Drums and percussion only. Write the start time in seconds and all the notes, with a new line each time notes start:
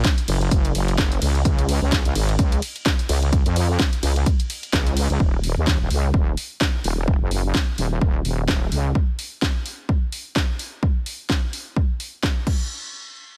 0.04 kick, snare, closed hi-hat
0.18 closed hi-hat
0.28 open hi-hat, ride
0.41 closed hi-hat
0.51 kick, closed hi-hat
0.65 closed hi-hat
0.75 open hi-hat, ride
0.88 closed hi-hat
0.98 kick, snare, closed hi-hat
1.12 closed hi-hat
1.22 open hi-hat, ride
1.35 closed hi-hat
1.45 kick, closed hi-hat
1.59 closed hi-hat
1.69 open hi-hat, ride
1.92 kick, snare, closed hi-hat
2.05 closed hi-hat
2.15 open hi-hat, ride
2.29 closed hi-hat
2.39 kick, closed hi-hat
2.52 closed hi-hat
2.62 open hi-hat, ride
2.76 closed hi-hat
2.86 kick, snare, closed hi-hat
2.99 closed hi-hat
3.09 open hi-hat, ride
3.23 closed hi-hat
3.33 kick, closed hi-hat
3.46 closed hi-hat
3.56 open hi-hat, ride
3.79 kick, snare, closed hi-hat
3.93 closed hi-hat
4.03 open hi-hat, ride
4.16 closed hi-hat
4.26 kick, closed hi-hat
4.40 closed hi-hat
4.50 open hi-hat, ride
4.63 closed hi-hat
4.73 kick, snare, closed hi-hat
4.87 closed hi-hat
4.97 open hi-hat, ride
5.10 closed hi-hat
5.20 kick
5.44 open hi-hat
5.67 kick, snare
5.91 open hi-hat
6.14 kick
6.37 open hi-hat
6.61 kick, snare
6.84 open hi-hat
7.08 kick
7.31 open hi-hat
7.55 kick, snare
7.78 open hi-hat
8.01 kick
8.25 open hi-hat
8.48 kick, snare
8.72 open hi-hat
8.95 kick
9.19 open hi-hat
9.42 kick, snare
9.66 open hi-hat
9.89 kick
10.12 open hi-hat
10.36 kick, snare
10.59 open hi-hat
10.83 kick
11.06 open hi-hat
11.30 kick, snare
11.53 open hi-hat
11.76 kick
12.00 open hi-hat
12.23 kick, snare
12.47 kick, crash